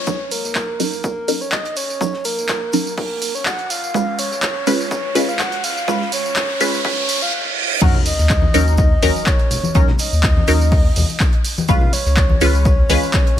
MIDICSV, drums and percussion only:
0, 0, Header, 1, 2, 480
1, 0, Start_track
1, 0, Key_signature, -6, "minor"
1, 0, Tempo, 483871
1, 73, Time_signature, 4, 2, 24, 8
1, 13290, End_track
2, 0, Start_track
2, 0, Title_t, "Drums"
2, 70, Note_on_c, 9, 82, 79
2, 71, Note_on_c, 9, 36, 108
2, 79, Note_on_c, 9, 54, 31
2, 170, Note_off_c, 9, 36, 0
2, 170, Note_off_c, 9, 82, 0
2, 178, Note_off_c, 9, 54, 0
2, 310, Note_on_c, 9, 82, 55
2, 312, Note_on_c, 9, 46, 99
2, 319, Note_on_c, 9, 54, 75
2, 410, Note_off_c, 9, 82, 0
2, 411, Note_off_c, 9, 46, 0
2, 418, Note_off_c, 9, 54, 0
2, 439, Note_on_c, 9, 38, 42
2, 447, Note_on_c, 9, 54, 45
2, 538, Note_off_c, 9, 38, 0
2, 546, Note_off_c, 9, 54, 0
2, 548, Note_on_c, 9, 39, 118
2, 551, Note_on_c, 9, 36, 105
2, 551, Note_on_c, 9, 38, 108
2, 554, Note_on_c, 9, 82, 77
2, 558, Note_on_c, 9, 54, 34
2, 647, Note_off_c, 9, 39, 0
2, 650, Note_off_c, 9, 36, 0
2, 651, Note_off_c, 9, 38, 0
2, 653, Note_off_c, 9, 82, 0
2, 657, Note_off_c, 9, 54, 0
2, 792, Note_on_c, 9, 46, 89
2, 797, Note_on_c, 9, 82, 59
2, 798, Note_on_c, 9, 54, 76
2, 891, Note_off_c, 9, 46, 0
2, 896, Note_off_c, 9, 82, 0
2, 898, Note_off_c, 9, 54, 0
2, 927, Note_on_c, 9, 54, 43
2, 1026, Note_off_c, 9, 54, 0
2, 1031, Note_on_c, 9, 36, 115
2, 1031, Note_on_c, 9, 82, 89
2, 1038, Note_on_c, 9, 54, 32
2, 1130, Note_off_c, 9, 36, 0
2, 1130, Note_off_c, 9, 82, 0
2, 1138, Note_off_c, 9, 54, 0
2, 1271, Note_on_c, 9, 46, 99
2, 1273, Note_on_c, 9, 82, 61
2, 1278, Note_on_c, 9, 54, 77
2, 1371, Note_off_c, 9, 46, 0
2, 1372, Note_off_c, 9, 82, 0
2, 1377, Note_off_c, 9, 54, 0
2, 1406, Note_on_c, 9, 54, 43
2, 1506, Note_off_c, 9, 54, 0
2, 1507, Note_on_c, 9, 38, 103
2, 1508, Note_on_c, 9, 39, 121
2, 1509, Note_on_c, 9, 82, 76
2, 1511, Note_on_c, 9, 36, 104
2, 1518, Note_on_c, 9, 54, 33
2, 1607, Note_off_c, 9, 38, 0
2, 1607, Note_off_c, 9, 39, 0
2, 1608, Note_off_c, 9, 82, 0
2, 1611, Note_off_c, 9, 36, 0
2, 1617, Note_off_c, 9, 54, 0
2, 1640, Note_on_c, 9, 42, 45
2, 1739, Note_off_c, 9, 42, 0
2, 1751, Note_on_c, 9, 82, 60
2, 1752, Note_on_c, 9, 46, 88
2, 1759, Note_on_c, 9, 54, 81
2, 1850, Note_off_c, 9, 82, 0
2, 1851, Note_off_c, 9, 46, 0
2, 1858, Note_off_c, 9, 54, 0
2, 1887, Note_on_c, 9, 54, 42
2, 1986, Note_off_c, 9, 54, 0
2, 1991, Note_on_c, 9, 36, 112
2, 1997, Note_on_c, 9, 82, 87
2, 1999, Note_on_c, 9, 54, 31
2, 2091, Note_off_c, 9, 36, 0
2, 2096, Note_off_c, 9, 82, 0
2, 2098, Note_off_c, 9, 54, 0
2, 2118, Note_on_c, 9, 38, 41
2, 2217, Note_off_c, 9, 38, 0
2, 2228, Note_on_c, 9, 82, 67
2, 2232, Note_on_c, 9, 46, 102
2, 2239, Note_on_c, 9, 54, 75
2, 2328, Note_off_c, 9, 82, 0
2, 2331, Note_off_c, 9, 46, 0
2, 2338, Note_off_c, 9, 54, 0
2, 2367, Note_on_c, 9, 54, 45
2, 2466, Note_off_c, 9, 54, 0
2, 2466, Note_on_c, 9, 82, 91
2, 2468, Note_on_c, 9, 39, 115
2, 2471, Note_on_c, 9, 36, 110
2, 2476, Note_on_c, 9, 38, 106
2, 2479, Note_on_c, 9, 54, 33
2, 2565, Note_off_c, 9, 82, 0
2, 2567, Note_off_c, 9, 39, 0
2, 2571, Note_off_c, 9, 36, 0
2, 2575, Note_off_c, 9, 38, 0
2, 2578, Note_off_c, 9, 54, 0
2, 2706, Note_on_c, 9, 82, 68
2, 2712, Note_on_c, 9, 46, 93
2, 2719, Note_on_c, 9, 54, 75
2, 2805, Note_off_c, 9, 82, 0
2, 2811, Note_off_c, 9, 46, 0
2, 2818, Note_off_c, 9, 54, 0
2, 2847, Note_on_c, 9, 54, 43
2, 2946, Note_off_c, 9, 54, 0
2, 2951, Note_on_c, 9, 46, 83
2, 2952, Note_on_c, 9, 36, 116
2, 2959, Note_on_c, 9, 54, 34
2, 3050, Note_off_c, 9, 46, 0
2, 3051, Note_off_c, 9, 36, 0
2, 3058, Note_off_c, 9, 54, 0
2, 3192, Note_on_c, 9, 46, 108
2, 3193, Note_on_c, 9, 82, 64
2, 3198, Note_on_c, 9, 54, 77
2, 3291, Note_off_c, 9, 46, 0
2, 3292, Note_off_c, 9, 82, 0
2, 3298, Note_off_c, 9, 54, 0
2, 3327, Note_on_c, 9, 54, 43
2, 3426, Note_off_c, 9, 54, 0
2, 3428, Note_on_c, 9, 39, 120
2, 3432, Note_on_c, 9, 36, 107
2, 3433, Note_on_c, 9, 38, 119
2, 3438, Note_on_c, 9, 54, 33
2, 3440, Note_on_c, 9, 82, 86
2, 3527, Note_off_c, 9, 39, 0
2, 3531, Note_off_c, 9, 36, 0
2, 3532, Note_off_c, 9, 38, 0
2, 3537, Note_off_c, 9, 54, 0
2, 3539, Note_off_c, 9, 82, 0
2, 3559, Note_on_c, 9, 42, 39
2, 3658, Note_off_c, 9, 42, 0
2, 3672, Note_on_c, 9, 46, 94
2, 3678, Note_on_c, 9, 54, 78
2, 3678, Note_on_c, 9, 82, 69
2, 3771, Note_off_c, 9, 46, 0
2, 3777, Note_off_c, 9, 82, 0
2, 3778, Note_off_c, 9, 54, 0
2, 3807, Note_on_c, 9, 54, 43
2, 3906, Note_off_c, 9, 54, 0
2, 3912, Note_on_c, 9, 36, 123
2, 3919, Note_on_c, 9, 54, 33
2, 3922, Note_on_c, 9, 82, 89
2, 4011, Note_off_c, 9, 36, 0
2, 4018, Note_off_c, 9, 54, 0
2, 4021, Note_off_c, 9, 82, 0
2, 4153, Note_on_c, 9, 46, 110
2, 4154, Note_on_c, 9, 82, 60
2, 4159, Note_on_c, 9, 54, 75
2, 4252, Note_off_c, 9, 46, 0
2, 4253, Note_off_c, 9, 82, 0
2, 4259, Note_off_c, 9, 54, 0
2, 4281, Note_on_c, 9, 38, 44
2, 4287, Note_on_c, 9, 54, 42
2, 4380, Note_off_c, 9, 38, 0
2, 4387, Note_off_c, 9, 54, 0
2, 4388, Note_on_c, 9, 82, 78
2, 4389, Note_on_c, 9, 39, 123
2, 4392, Note_on_c, 9, 36, 112
2, 4399, Note_on_c, 9, 38, 116
2, 4487, Note_off_c, 9, 82, 0
2, 4489, Note_off_c, 9, 39, 0
2, 4491, Note_off_c, 9, 36, 0
2, 4498, Note_off_c, 9, 38, 0
2, 4628, Note_on_c, 9, 82, 66
2, 4633, Note_on_c, 9, 46, 98
2, 4640, Note_on_c, 9, 54, 73
2, 4727, Note_off_c, 9, 82, 0
2, 4732, Note_off_c, 9, 46, 0
2, 4739, Note_off_c, 9, 54, 0
2, 4767, Note_on_c, 9, 54, 41
2, 4867, Note_off_c, 9, 54, 0
2, 4872, Note_on_c, 9, 36, 125
2, 4874, Note_on_c, 9, 82, 84
2, 4879, Note_on_c, 9, 54, 31
2, 4971, Note_off_c, 9, 36, 0
2, 4973, Note_off_c, 9, 82, 0
2, 4979, Note_off_c, 9, 54, 0
2, 5113, Note_on_c, 9, 46, 108
2, 5116, Note_on_c, 9, 82, 64
2, 5119, Note_on_c, 9, 54, 75
2, 5212, Note_off_c, 9, 46, 0
2, 5215, Note_off_c, 9, 82, 0
2, 5219, Note_off_c, 9, 54, 0
2, 5247, Note_on_c, 9, 54, 43
2, 5346, Note_off_c, 9, 54, 0
2, 5349, Note_on_c, 9, 39, 122
2, 5352, Note_on_c, 9, 36, 112
2, 5352, Note_on_c, 9, 38, 118
2, 5358, Note_on_c, 9, 82, 89
2, 5359, Note_on_c, 9, 54, 33
2, 5448, Note_off_c, 9, 39, 0
2, 5451, Note_off_c, 9, 36, 0
2, 5451, Note_off_c, 9, 38, 0
2, 5457, Note_off_c, 9, 82, 0
2, 5458, Note_off_c, 9, 54, 0
2, 5475, Note_on_c, 9, 42, 45
2, 5575, Note_off_c, 9, 42, 0
2, 5593, Note_on_c, 9, 46, 98
2, 5595, Note_on_c, 9, 82, 74
2, 5599, Note_on_c, 9, 54, 76
2, 5692, Note_off_c, 9, 46, 0
2, 5694, Note_off_c, 9, 82, 0
2, 5699, Note_off_c, 9, 54, 0
2, 5727, Note_on_c, 9, 54, 41
2, 5826, Note_off_c, 9, 54, 0
2, 5832, Note_on_c, 9, 36, 125
2, 5837, Note_on_c, 9, 82, 81
2, 5840, Note_on_c, 9, 54, 30
2, 5931, Note_off_c, 9, 36, 0
2, 5936, Note_off_c, 9, 82, 0
2, 5939, Note_off_c, 9, 54, 0
2, 5966, Note_on_c, 9, 38, 45
2, 6065, Note_off_c, 9, 38, 0
2, 6073, Note_on_c, 9, 46, 109
2, 6079, Note_on_c, 9, 54, 73
2, 6081, Note_on_c, 9, 82, 64
2, 6172, Note_off_c, 9, 46, 0
2, 6178, Note_off_c, 9, 54, 0
2, 6180, Note_off_c, 9, 82, 0
2, 6208, Note_on_c, 9, 54, 44
2, 6307, Note_off_c, 9, 54, 0
2, 6308, Note_on_c, 9, 82, 82
2, 6309, Note_on_c, 9, 39, 115
2, 6312, Note_on_c, 9, 36, 114
2, 6315, Note_on_c, 9, 38, 116
2, 6320, Note_on_c, 9, 54, 32
2, 6407, Note_off_c, 9, 82, 0
2, 6408, Note_off_c, 9, 39, 0
2, 6411, Note_off_c, 9, 36, 0
2, 6415, Note_off_c, 9, 38, 0
2, 6419, Note_off_c, 9, 54, 0
2, 6552, Note_on_c, 9, 46, 97
2, 6559, Note_on_c, 9, 54, 76
2, 6559, Note_on_c, 9, 82, 68
2, 6652, Note_off_c, 9, 46, 0
2, 6658, Note_off_c, 9, 54, 0
2, 6658, Note_off_c, 9, 82, 0
2, 6687, Note_on_c, 9, 54, 42
2, 6786, Note_off_c, 9, 54, 0
2, 6792, Note_on_c, 9, 36, 122
2, 6797, Note_on_c, 9, 46, 80
2, 6799, Note_on_c, 9, 54, 31
2, 6891, Note_off_c, 9, 36, 0
2, 6896, Note_off_c, 9, 46, 0
2, 6898, Note_off_c, 9, 54, 0
2, 7032, Note_on_c, 9, 46, 110
2, 7034, Note_on_c, 9, 82, 73
2, 7038, Note_on_c, 9, 54, 74
2, 7131, Note_off_c, 9, 46, 0
2, 7133, Note_off_c, 9, 82, 0
2, 7138, Note_off_c, 9, 54, 0
2, 7166, Note_on_c, 9, 54, 43
2, 7265, Note_off_c, 9, 54, 0
2, 7747, Note_on_c, 9, 82, 85
2, 7752, Note_on_c, 9, 36, 112
2, 7752, Note_on_c, 9, 49, 102
2, 7759, Note_on_c, 9, 54, 35
2, 7846, Note_off_c, 9, 82, 0
2, 7851, Note_off_c, 9, 49, 0
2, 7852, Note_off_c, 9, 36, 0
2, 7858, Note_off_c, 9, 54, 0
2, 7878, Note_on_c, 9, 64, 92
2, 7977, Note_off_c, 9, 64, 0
2, 7992, Note_on_c, 9, 46, 106
2, 7999, Note_on_c, 9, 54, 81
2, 8000, Note_on_c, 9, 82, 61
2, 8091, Note_off_c, 9, 46, 0
2, 8098, Note_off_c, 9, 54, 0
2, 8099, Note_off_c, 9, 82, 0
2, 8125, Note_on_c, 9, 38, 44
2, 8127, Note_on_c, 9, 54, 46
2, 8224, Note_off_c, 9, 38, 0
2, 8226, Note_off_c, 9, 54, 0
2, 8229, Note_on_c, 9, 39, 126
2, 8232, Note_on_c, 9, 36, 114
2, 8232, Note_on_c, 9, 38, 124
2, 8234, Note_on_c, 9, 82, 80
2, 8239, Note_on_c, 9, 54, 35
2, 8328, Note_off_c, 9, 39, 0
2, 8331, Note_off_c, 9, 38, 0
2, 8332, Note_off_c, 9, 36, 0
2, 8333, Note_off_c, 9, 82, 0
2, 8338, Note_off_c, 9, 54, 0
2, 8351, Note_on_c, 9, 63, 93
2, 8451, Note_off_c, 9, 63, 0
2, 8473, Note_on_c, 9, 46, 91
2, 8475, Note_on_c, 9, 82, 72
2, 8480, Note_on_c, 9, 54, 85
2, 8572, Note_off_c, 9, 46, 0
2, 8574, Note_off_c, 9, 82, 0
2, 8579, Note_off_c, 9, 54, 0
2, 8607, Note_on_c, 9, 54, 46
2, 8706, Note_on_c, 9, 82, 91
2, 8707, Note_off_c, 9, 54, 0
2, 8712, Note_on_c, 9, 36, 123
2, 8720, Note_on_c, 9, 54, 37
2, 8805, Note_off_c, 9, 82, 0
2, 8812, Note_off_c, 9, 36, 0
2, 8819, Note_off_c, 9, 54, 0
2, 8953, Note_on_c, 9, 46, 104
2, 8953, Note_on_c, 9, 63, 58
2, 8954, Note_on_c, 9, 82, 69
2, 8960, Note_on_c, 9, 54, 80
2, 9052, Note_off_c, 9, 46, 0
2, 9052, Note_off_c, 9, 63, 0
2, 9053, Note_off_c, 9, 82, 0
2, 9059, Note_off_c, 9, 54, 0
2, 9087, Note_on_c, 9, 54, 45
2, 9186, Note_on_c, 9, 38, 121
2, 9187, Note_off_c, 9, 54, 0
2, 9189, Note_on_c, 9, 39, 125
2, 9191, Note_on_c, 9, 82, 85
2, 9192, Note_on_c, 9, 36, 104
2, 9199, Note_on_c, 9, 54, 35
2, 9285, Note_off_c, 9, 38, 0
2, 9288, Note_off_c, 9, 39, 0
2, 9290, Note_off_c, 9, 82, 0
2, 9291, Note_off_c, 9, 36, 0
2, 9299, Note_off_c, 9, 54, 0
2, 9318, Note_on_c, 9, 42, 48
2, 9417, Note_off_c, 9, 42, 0
2, 9431, Note_on_c, 9, 64, 71
2, 9433, Note_on_c, 9, 46, 96
2, 9435, Note_on_c, 9, 82, 75
2, 9439, Note_on_c, 9, 54, 81
2, 9530, Note_off_c, 9, 64, 0
2, 9532, Note_off_c, 9, 46, 0
2, 9534, Note_off_c, 9, 82, 0
2, 9538, Note_off_c, 9, 54, 0
2, 9556, Note_on_c, 9, 63, 89
2, 9568, Note_on_c, 9, 54, 46
2, 9655, Note_off_c, 9, 63, 0
2, 9667, Note_off_c, 9, 54, 0
2, 9671, Note_on_c, 9, 82, 90
2, 9672, Note_on_c, 9, 36, 116
2, 9680, Note_on_c, 9, 54, 35
2, 9770, Note_off_c, 9, 82, 0
2, 9771, Note_off_c, 9, 36, 0
2, 9779, Note_off_c, 9, 54, 0
2, 9799, Note_on_c, 9, 38, 49
2, 9801, Note_on_c, 9, 64, 93
2, 9899, Note_off_c, 9, 38, 0
2, 9900, Note_off_c, 9, 64, 0
2, 9907, Note_on_c, 9, 82, 67
2, 9913, Note_on_c, 9, 46, 110
2, 9920, Note_on_c, 9, 54, 80
2, 10006, Note_off_c, 9, 82, 0
2, 10013, Note_off_c, 9, 46, 0
2, 10019, Note_off_c, 9, 54, 0
2, 10049, Note_on_c, 9, 54, 46
2, 10148, Note_off_c, 9, 54, 0
2, 10150, Note_on_c, 9, 39, 126
2, 10153, Note_on_c, 9, 36, 113
2, 10156, Note_on_c, 9, 38, 120
2, 10160, Note_on_c, 9, 54, 33
2, 10160, Note_on_c, 9, 82, 95
2, 10249, Note_off_c, 9, 39, 0
2, 10252, Note_off_c, 9, 36, 0
2, 10255, Note_off_c, 9, 38, 0
2, 10260, Note_off_c, 9, 54, 0
2, 10260, Note_off_c, 9, 82, 0
2, 10285, Note_on_c, 9, 63, 93
2, 10384, Note_off_c, 9, 63, 0
2, 10390, Note_on_c, 9, 82, 67
2, 10393, Note_on_c, 9, 46, 95
2, 10400, Note_on_c, 9, 54, 81
2, 10490, Note_off_c, 9, 82, 0
2, 10493, Note_off_c, 9, 46, 0
2, 10499, Note_off_c, 9, 54, 0
2, 10528, Note_on_c, 9, 54, 45
2, 10627, Note_off_c, 9, 54, 0
2, 10633, Note_on_c, 9, 36, 119
2, 10633, Note_on_c, 9, 46, 78
2, 10640, Note_on_c, 9, 54, 35
2, 10732, Note_off_c, 9, 36, 0
2, 10732, Note_off_c, 9, 46, 0
2, 10739, Note_off_c, 9, 54, 0
2, 10873, Note_on_c, 9, 46, 111
2, 10875, Note_on_c, 9, 82, 72
2, 10879, Note_on_c, 9, 63, 65
2, 10879, Note_on_c, 9, 64, 81
2, 10880, Note_on_c, 9, 54, 82
2, 10972, Note_off_c, 9, 46, 0
2, 10974, Note_off_c, 9, 82, 0
2, 10978, Note_off_c, 9, 63, 0
2, 10979, Note_off_c, 9, 54, 0
2, 10979, Note_off_c, 9, 64, 0
2, 11008, Note_on_c, 9, 54, 47
2, 11107, Note_off_c, 9, 54, 0
2, 11110, Note_on_c, 9, 39, 123
2, 11111, Note_on_c, 9, 38, 111
2, 11113, Note_on_c, 9, 36, 108
2, 11117, Note_on_c, 9, 82, 83
2, 11120, Note_on_c, 9, 54, 35
2, 11209, Note_off_c, 9, 39, 0
2, 11211, Note_off_c, 9, 38, 0
2, 11212, Note_off_c, 9, 36, 0
2, 11217, Note_off_c, 9, 82, 0
2, 11219, Note_off_c, 9, 54, 0
2, 11237, Note_on_c, 9, 42, 47
2, 11336, Note_off_c, 9, 42, 0
2, 11353, Note_on_c, 9, 46, 97
2, 11357, Note_on_c, 9, 82, 71
2, 11360, Note_on_c, 9, 54, 79
2, 11452, Note_off_c, 9, 46, 0
2, 11457, Note_off_c, 9, 82, 0
2, 11459, Note_off_c, 9, 54, 0
2, 11486, Note_on_c, 9, 63, 100
2, 11488, Note_on_c, 9, 54, 43
2, 11585, Note_off_c, 9, 63, 0
2, 11587, Note_off_c, 9, 54, 0
2, 11591, Note_on_c, 9, 82, 91
2, 11593, Note_on_c, 9, 36, 124
2, 11600, Note_on_c, 9, 54, 32
2, 11690, Note_off_c, 9, 82, 0
2, 11692, Note_off_c, 9, 36, 0
2, 11699, Note_off_c, 9, 54, 0
2, 11718, Note_on_c, 9, 64, 92
2, 11817, Note_off_c, 9, 64, 0
2, 11833, Note_on_c, 9, 46, 107
2, 11838, Note_on_c, 9, 82, 62
2, 11840, Note_on_c, 9, 54, 77
2, 11933, Note_off_c, 9, 46, 0
2, 11937, Note_off_c, 9, 82, 0
2, 11939, Note_off_c, 9, 54, 0
2, 11962, Note_on_c, 9, 38, 40
2, 11968, Note_on_c, 9, 54, 43
2, 12062, Note_off_c, 9, 38, 0
2, 12067, Note_off_c, 9, 54, 0
2, 12070, Note_on_c, 9, 39, 123
2, 12072, Note_on_c, 9, 82, 94
2, 12073, Note_on_c, 9, 36, 115
2, 12078, Note_on_c, 9, 38, 110
2, 12080, Note_on_c, 9, 54, 32
2, 12169, Note_off_c, 9, 39, 0
2, 12171, Note_off_c, 9, 82, 0
2, 12172, Note_off_c, 9, 36, 0
2, 12178, Note_off_c, 9, 38, 0
2, 12179, Note_off_c, 9, 54, 0
2, 12197, Note_on_c, 9, 63, 102
2, 12297, Note_off_c, 9, 63, 0
2, 12309, Note_on_c, 9, 82, 71
2, 12313, Note_on_c, 9, 46, 99
2, 12320, Note_on_c, 9, 54, 73
2, 12408, Note_off_c, 9, 82, 0
2, 12412, Note_off_c, 9, 46, 0
2, 12419, Note_off_c, 9, 54, 0
2, 12448, Note_on_c, 9, 54, 41
2, 12548, Note_off_c, 9, 54, 0
2, 12553, Note_on_c, 9, 36, 127
2, 12553, Note_on_c, 9, 82, 81
2, 12560, Note_on_c, 9, 54, 33
2, 12652, Note_off_c, 9, 36, 0
2, 12653, Note_off_c, 9, 82, 0
2, 12660, Note_off_c, 9, 54, 0
2, 12791, Note_on_c, 9, 82, 72
2, 12794, Note_on_c, 9, 46, 109
2, 12797, Note_on_c, 9, 63, 68
2, 12800, Note_on_c, 9, 54, 73
2, 12890, Note_off_c, 9, 82, 0
2, 12893, Note_off_c, 9, 46, 0
2, 12896, Note_off_c, 9, 63, 0
2, 12899, Note_off_c, 9, 54, 0
2, 12928, Note_on_c, 9, 54, 44
2, 13027, Note_off_c, 9, 54, 0
2, 13030, Note_on_c, 9, 39, 121
2, 13032, Note_on_c, 9, 82, 83
2, 13033, Note_on_c, 9, 36, 111
2, 13035, Note_on_c, 9, 38, 120
2, 13040, Note_on_c, 9, 54, 34
2, 13129, Note_off_c, 9, 39, 0
2, 13131, Note_off_c, 9, 82, 0
2, 13132, Note_off_c, 9, 36, 0
2, 13134, Note_off_c, 9, 38, 0
2, 13139, Note_off_c, 9, 54, 0
2, 13161, Note_on_c, 9, 42, 42
2, 13260, Note_off_c, 9, 42, 0
2, 13290, End_track
0, 0, End_of_file